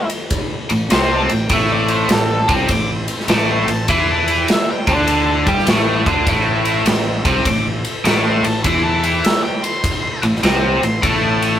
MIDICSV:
0, 0, Header, 1, 6, 480
1, 0, Start_track
1, 0, Key_signature, 0, "minor"
1, 0, Tempo, 595829
1, 1218, Time_signature, 4, 2, 24, 8
1, 9340, End_track
2, 0, Start_track
2, 0, Title_t, "Lead electric guitar"
2, 0, Program_c, 0, 29
2, 744, Note_on_c, 0, 84, 100
2, 896, Note_off_c, 0, 84, 0
2, 903, Note_on_c, 0, 81, 86
2, 1066, Note_off_c, 0, 81, 0
2, 1066, Note_on_c, 0, 79, 83
2, 1232, Note_off_c, 0, 79, 0
2, 1232, Note_on_c, 0, 76, 94
2, 1381, Note_off_c, 0, 76, 0
2, 1385, Note_on_c, 0, 74, 97
2, 1537, Note_off_c, 0, 74, 0
2, 1537, Note_on_c, 0, 72, 101
2, 1693, Note_off_c, 0, 72, 0
2, 1708, Note_on_c, 0, 69, 104
2, 2010, Note_off_c, 0, 69, 0
2, 2187, Note_on_c, 0, 86, 91
2, 2338, Note_off_c, 0, 86, 0
2, 2658, Note_on_c, 0, 86, 91
2, 2814, Note_off_c, 0, 86, 0
2, 2826, Note_on_c, 0, 84, 94
2, 2990, Note_off_c, 0, 84, 0
2, 2990, Note_on_c, 0, 81, 90
2, 3139, Note_off_c, 0, 81, 0
2, 3144, Note_on_c, 0, 84, 103
2, 3312, Note_off_c, 0, 84, 0
2, 3312, Note_on_c, 0, 81, 90
2, 3460, Note_off_c, 0, 81, 0
2, 3476, Note_on_c, 0, 79, 83
2, 3622, Note_off_c, 0, 79, 0
2, 3638, Note_on_c, 0, 76, 87
2, 3783, Note_off_c, 0, 76, 0
2, 3793, Note_on_c, 0, 79, 90
2, 3941, Note_off_c, 0, 79, 0
2, 3948, Note_on_c, 0, 81, 97
2, 4408, Note_off_c, 0, 81, 0
2, 6011, Note_on_c, 0, 86, 99
2, 6168, Note_off_c, 0, 86, 0
2, 6506, Note_on_c, 0, 86, 93
2, 6644, Note_off_c, 0, 86, 0
2, 6647, Note_on_c, 0, 84, 97
2, 6803, Note_off_c, 0, 84, 0
2, 6803, Note_on_c, 0, 81, 91
2, 6954, Note_off_c, 0, 81, 0
2, 6957, Note_on_c, 0, 84, 94
2, 7112, Note_off_c, 0, 84, 0
2, 7116, Note_on_c, 0, 81, 86
2, 7276, Note_on_c, 0, 79, 97
2, 7279, Note_off_c, 0, 81, 0
2, 7444, Note_off_c, 0, 79, 0
2, 7444, Note_on_c, 0, 76, 94
2, 7598, Note_off_c, 0, 76, 0
2, 7601, Note_on_c, 0, 79, 86
2, 7760, Note_on_c, 0, 84, 105
2, 7762, Note_off_c, 0, 79, 0
2, 8232, Note_off_c, 0, 84, 0
2, 8735, Note_on_c, 0, 84, 89
2, 8896, Note_off_c, 0, 84, 0
2, 8896, Note_on_c, 0, 81, 97
2, 9340, Note_off_c, 0, 81, 0
2, 9340, End_track
3, 0, Start_track
3, 0, Title_t, "Tonewheel organ"
3, 0, Program_c, 1, 16
3, 1204, Note_on_c, 1, 69, 72
3, 1206, Note_on_c, 1, 64, 69
3, 1207, Note_on_c, 1, 60, 66
3, 1207, Note_on_c, 1, 72, 67
3, 3112, Note_off_c, 1, 69, 0
3, 3113, Note_off_c, 1, 60, 0
3, 3113, Note_off_c, 1, 64, 0
3, 3114, Note_off_c, 1, 72, 0
3, 3126, Note_on_c, 1, 72, 64
3, 3129, Note_on_c, 1, 64, 67
3, 3131, Note_on_c, 1, 69, 67
3, 5032, Note_off_c, 1, 64, 0
3, 5033, Note_off_c, 1, 69, 0
3, 5034, Note_off_c, 1, 72, 0
3, 5053, Note_on_c, 1, 72, 68
3, 5058, Note_on_c, 1, 76, 67
3, 5065, Note_on_c, 1, 69, 66
3, 6955, Note_off_c, 1, 76, 0
3, 6956, Note_off_c, 1, 72, 0
3, 6958, Note_off_c, 1, 69, 0
3, 6971, Note_on_c, 1, 72, 68
3, 6973, Note_on_c, 1, 69, 69
3, 6977, Note_on_c, 1, 64, 69
3, 8873, Note_off_c, 1, 69, 0
3, 8875, Note_off_c, 1, 64, 0
3, 8875, Note_off_c, 1, 72, 0
3, 8884, Note_on_c, 1, 69, 71
3, 8885, Note_on_c, 1, 72, 73
3, 8890, Note_on_c, 1, 76, 70
3, 9340, Note_off_c, 1, 69, 0
3, 9340, Note_off_c, 1, 72, 0
3, 9340, Note_off_c, 1, 76, 0
3, 9340, End_track
4, 0, Start_track
4, 0, Title_t, "Overdriven electric guitar"
4, 0, Program_c, 2, 29
4, 568, Note_on_c, 2, 45, 76
4, 702, Note_off_c, 2, 45, 0
4, 733, Note_on_c, 2, 48, 77
4, 738, Note_on_c, 2, 60, 92
4, 1042, Note_off_c, 2, 48, 0
4, 1044, Note_off_c, 2, 60, 0
4, 1046, Note_on_c, 2, 45, 71
4, 1181, Note_off_c, 2, 45, 0
4, 1207, Note_on_c, 2, 45, 90
4, 1215, Note_on_c, 2, 57, 100
4, 1678, Note_off_c, 2, 45, 0
4, 1688, Note_on_c, 2, 45, 69
4, 1692, Note_off_c, 2, 57, 0
4, 1946, Note_off_c, 2, 45, 0
4, 2001, Note_on_c, 2, 48, 83
4, 2008, Note_on_c, 2, 60, 100
4, 2167, Note_off_c, 2, 48, 0
4, 2171, Note_off_c, 2, 60, 0
4, 2174, Note_on_c, 2, 45, 67
4, 2429, Note_off_c, 2, 45, 0
4, 2653, Note_on_c, 2, 45, 81
4, 2661, Note_on_c, 2, 57, 107
4, 2956, Note_off_c, 2, 45, 0
4, 2965, Note_on_c, 2, 45, 68
4, 2966, Note_off_c, 2, 57, 0
4, 3101, Note_off_c, 2, 45, 0
4, 3131, Note_on_c, 2, 52, 79
4, 3137, Note_on_c, 2, 64, 95
4, 3609, Note_off_c, 2, 52, 0
4, 3612, Note_off_c, 2, 64, 0
4, 3927, Note_on_c, 2, 50, 88
4, 3934, Note_on_c, 2, 62, 93
4, 4400, Note_off_c, 2, 50, 0
4, 4403, Note_off_c, 2, 62, 0
4, 4404, Note_on_c, 2, 55, 93
4, 4414, Note_on_c, 2, 67, 108
4, 4567, Note_off_c, 2, 55, 0
4, 4572, Note_off_c, 2, 67, 0
4, 4572, Note_on_c, 2, 45, 77
4, 4578, Note_on_c, 2, 57, 88
4, 4880, Note_off_c, 2, 45, 0
4, 4883, Note_off_c, 2, 57, 0
4, 4887, Note_on_c, 2, 50, 82
4, 4896, Note_on_c, 2, 62, 93
4, 5049, Note_off_c, 2, 50, 0
4, 5053, Note_off_c, 2, 62, 0
4, 5054, Note_on_c, 2, 45, 90
4, 5062, Note_on_c, 2, 57, 97
4, 5519, Note_off_c, 2, 45, 0
4, 5528, Note_on_c, 2, 45, 71
4, 5533, Note_off_c, 2, 57, 0
4, 5784, Note_off_c, 2, 45, 0
4, 5846, Note_on_c, 2, 48, 91
4, 5854, Note_on_c, 2, 60, 92
4, 6007, Note_off_c, 2, 48, 0
4, 6011, Note_off_c, 2, 60, 0
4, 6015, Note_on_c, 2, 45, 72
4, 6267, Note_off_c, 2, 45, 0
4, 6484, Note_on_c, 2, 45, 88
4, 6492, Note_on_c, 2, 57, 99
4, 6794, Note_off_c, 2, 45, 0
4, 6798, Note_off_c, 2, 57, 0
4, 6813, Note_on_c, 2, 45, 75
4, 6942, Note_off_c, 2, 45, 0
4, 6964, Note_on_c, 2, 52, 92
4, 6970, Note_on_c, 2, 64, 102
4, 7443, Note_off_c, 2, 52, 0
4, 7446, Note_off_c, 2, 64, 0
4, 8246, Note_on_c, 2, 45, 80
4, 8378, Note_off_c, 2, 45, 0
4, 8406, Note_on_c, 2, 48, 82
4, 8418, Note_on_c, 2, 60, 94
4, 8715, Note_off_c, 2, 48, 0
4, 8721, Note_off_c, 2, 60, 0
4, 8729, Note_on_c, 2, 45, 76
4, 8860, Note_off_c, 2, 45, 0
4, 8881, Note_on_c, 2, 45, 88
4, 8889, Note_on_c, 2, 57, 98
4, 9340, Note_off_c, 2, 45, 0
4, 9340, Note_off_c, 2, 57, 0
4, 9340, End_track
5, 0, Start_track
5, 0, Title_t, "Fingered electric bass"
5, 0, Program_c, 3, 33
5, 568, Note_on_c, 3, 33, 80
5, 723, Note_off_c, 3, 33, 0
5, 735, Note_on_c, 3, 36, 93
5, 1030, Note_off_c, 3, 36, 0
5, 1055, Note_on_c, 3, 33, 79
5, 1201, Note_off_c, 3, 33, 0
5, 1206, Note_on_c, 3, 33, 92
5, 1660, Note_off_c, 3, 33, 0
5, 1692, Note_on_c, 3, 33, 72
5, 1989, Note_off_c, 3, 33, 0
5, 2006, Note_on_c, 3, 36, 95
5, 2163, Note_off_c, 3, 36, 0
5, 2167, Note_on_c, 3, 33, 78
5, 2466, Note_off_c, 3, 33, 0
5, 2639, Note_on_c, 3, 33, 90
5, 2942, Note_off_c, 3, 33, 0
5, 2955, Note_on_c, 3, 33, 79
5, 3116, Note_off_c, 3, 33, 0
5, 3126, Note_on_c, 3, 40, 87
5, 3580, Note_off_c, 3, 40, 0
5, 3925, Note_on_c, 3, 38, 88
5, 4376, Note_off_c, 3, 38, 0
5, 4400, Note_on_c, 3, 43, 89
5, 4558, Note_off_c, 3, 43, 0
5, 4567, Note_on_c, 3, 33, 92
5, 4865, Note_off_c, 3, 33, 0
5, 4883, Note_on_c, 3, 38, 88
5, 5040, Note_off_c, 3, 38, 0
5, 5050, Note_on_c, 3, 33, 82
5, 5500, Note_off_c, 3, 33, 0
5, 5521, Note_on_c, 3, 33, 78
5, 5821, Note_off_c, 3, 33, 0
5, 5838, Note_on_c, 3, 36, 96
5, 5996, Note_off_c, 3, 36, 0
5, 6002, Note_on_c, 3, 33, 74
5, 6301, Note_off_c, 3, 33, 0
5, 6478, Note_on_c, 3, 33, 88
5, 6779, Note_off_c, 3, 33, 0
5, 6798, Note_on_c, 3, 33, 75
5, 6956, Note_off_c, 3, 33, 0
5, 6959, Note_on_c, 3, 40, 93
5, 7413, Note_off_c, 3, 40, 0
5, 8241, Note_on_c, 3, 33, 82
5, 8397, Note_off_c, 3, 33, 0
5, 8401, Note_on_c, 3, 36, 99
5, 8700, Note_off_c, 3, 36, 0
5, 8716, Note_on_c, 3, 33, 81
5, 8874, Note_off_c, 3, 33, 0
5, 8889, Note_on_c, 3, 33, 86
5, 9338, Note_off_c, 3, 33, 0
5, 9340, End_track
6, 0, Start_track
6, 0, Title_t, "Drums"
6, 78, Note_on_c, 9, 51, 68
6, 158, Note_off_c, 9, 51, 0
6, 246, Note_on_c, 9, 51, 88
6, 248, Note_on_c, 9, 36, 100
6, 326, Note_off_c, 9, 51, 0
6, 329, Note_off_c, 9, 36, 0
6, 560, Note_on_c, 9, 51, 67
6, 641, Note_off_c, 9, 51, 0
6, 726, Note_on_c, 9, 51, 90
6, 740, Note_on_c, 9, 38, 108
6, 807, Note_off_c, 9, 51, 0
6, 821, Note_off_c, 9, 38, 0
6, 1043, Note_on_c, 9, 51, 70
6, 1124, Note_off_c, 9, 51, 0
6, 1204, Note_on_c, 9, 51, 98
6, 1208, Note_on_c, 9, 36, 100
6, 1285, Note_off_c, 9, 51, 0
6, 1288, Note_off_c, 9, 36, 0
6, 1518, Note_on_c, 9, 51, 73
6, 1599, Note_off_c, 9, 51, 0
6, 1683, Note_on_c, 9, 51, 94
6, 1697, Note_on_c, 9, 38, 110
6, 1764, Note_off_c, 9, 51, 0
6, 1778, Note_off_c, 9, 38, 0
6, 2004, Note_on_c, 9, 51, 73
6, 2005, Note_on_c, 9, 36, 102
6, 2084, Note_off_c, 9, 51, 0
6, 2085, Note_off_c, 9, 36, 0
6, 2164, Note_on_c, 9, 51, 90
6, 2168, Note_on_c, 9, 36, 88
6, 2244, Note_off_c, 9, 51, 0
6, 2248, Note_off_c, 9, 36, 0
6, 2480, Note_on_c, 9, 51, 70
6, 2561, Note_off_c, 9, 51, 0
6, 2579, Note_on_c, 9, 38, 32
6, 2643, Note_on_c, 9, 51, 94
6, 2657, Note_off_c, 9, 38, 0
6, 2657, Note_on_c, 9, 38, 109
6, 2724, Note_off_c, 9, 51, 0
6, 2738, Note_off_c, 9, 38, 0
6, 2964, Note_on_c, 9, 51, 67
6, 3045, Note_off_c, 9, 51, 0
6, 3127, Note_on_c, 9, 51, 86
6, 3130, Note_on_c, 9, 36, 102
6, 3207, Note_off_c, 9, 51, 0
6, 3210, Note_off_c, 9, 36, 0
6, 3447, Note_on_c, 9, 51, 64
6, 3527, Note_off_c, 9, 51, 0
6, 3611, Note_on_c, 9, 51, 88
6, 3625, Note_on_c, 9, 38, 108
6, 3692, Note_off_c, 9, 51, 0
6, 3705, Note_off_c, 9, 38, 0
6, 3925, Note_on_c, 9, 36, 98
6, 3925, Note_on_c, 9, 51, 69
6, 4006, Note_off_c, 9, 36, 0
6, 4006, Note_off_c, 9, 51, 0
6, 4089, Note_on_c, 9, 51, 87
6, 4169, Note_off_c, 9, 51, 0
6, 4404, Note_on_c, 9, 51, 67
6, 4405, Note_on_c, 9, 36, 106
6, 4485, Note_off_c, 9, 51, 0
6, 4486, Note_off_c, 9, 36, 0
6, 4501, Note_on_c, 9, 38, 32
6, 4565, Note_on_c, 9, 51, 88
6, 4579, Note_off_c, 9, 38, 0
6, 4579, Note_on_c, 9, 38, 109
6, 4646, Note_off_c, 9, 51, 0
6, 4660, Note_off_c, 9, 38, 0
6, 4885, Note_on_c, 9, 36, 99
6, 4887, Note_on_c, 9, 51, 61
6, 4965, Note_off_c, 9, 36, 0
6, 4968, Note_off_c, 9, 51, 0
6, 5048, Note_on_c, 9, 36, 100
6, 5050, Note_on_c, 9, 51, 85
6, 5129, Note_off_c, 9, 36, 0
6, 5130, Note_off_c, 9, 51, 0
6, 5360, Note_on_c, 9, 51, 72
6, 5441, Note_off_c, 9, 51, 0
6, 5524, Note_on_c, 9, 51, 97
6, 5538, Note_on_c, 9, 38, 105
6, 5605, Note_off_c, 9, 51, 0
6, 5619, Note_off_c, 9, 38, 0
6, 5841, Note_on_c, 9, 36, 105
6, 5842, Note_on_c, 9, 51, 75
6, 5921, Note_off_c, 9, 36, 0
6, 5923, Note_off_c, 9, 51, 0
6, 6005, Note_on_c, 9, 36, 91
6, 6007, Note_on_c, 9, 51, 94
6, 6086, Note_off_c, 9, 36, 0
6, 6087, Note_off_c, 9, 51, 0
6, 6321, Note_on_c, 9, 51, 67
6, 6402, Note_off_c, 9, 51, 0
6, 6487, Note_on_c, 9, 51, 97
6, 6501, Note_on_c, 9, 38, 109
6, 6567, Note_off_c, 9, 51, 0
6, 6581, Note_off_c, 9, 38, 0
6, 6803, Note_on_c, 9, 51, 73
6, 6883, Note_off_c, 9, 51, 0
6, 6963, Note_on_c, 9, 51, 92
6, 6964, Note_on_c, 9, 36, 99
6, 7044, Note_off_c, 9, 51, 0
6, 7045, Note_off_c, 9, 36, 0
6, 7280, Note_on_c, 9, 51, 70
6, 7360, Note_off_c, 9, 51, 0
6, 7448, Note_on_c, 9, 51, 94
6, 7462, Note_on_c, 9, 38, 112
6, 7528, Note_off_c, 9, 51, 0
6, 7542, Note_off_c, 9, 38, 0
6, 7764, Note_on_c, 9, 51, 71
6, 7845, Note_off_c, 9, 51, 0
6, 7926, Note_on_c, 9, 36, 101
6, 7927, Note_on_c, 9, 51, 87
6, 8006, Note_off_c, 9, 36, 0
6, 8008, Note_off_c, 9, 51, 0
6, 8241, Note_on_c, 9, 51, 65
6, 8322, Note_off_c, 9, 51, 0
6, 8343, Note_on_c, 9, 38, 32
6, 8405, Note_on_c, 9, 51, 91
6, 8419, Note_off_c, 9, 38, 0
6, 8419, Note_on_c, 9, 38, 103
6, 8486, Note_off_c, 9, 51, 0
6, 8500, Note_off_c, 9, 38, 0
6, 8726, Note_on_c, 9, 51, 64
6, 8807, Note_off_c, 9, 51, 0
6, 8887, Note_on_c, 9, 36, 103
6, 8888, Note_on_c, 9, 51, 87
6, 8968, Note_off_c, 9, 36, 0
6, 8969, Note_off_c, 9, 51, 0
6, 9203, Note_on_c, 9, 51, 73
6, 9284, Note_off_c, 9, 51, 0
6, 9340, End_track
0, 0, End_of_file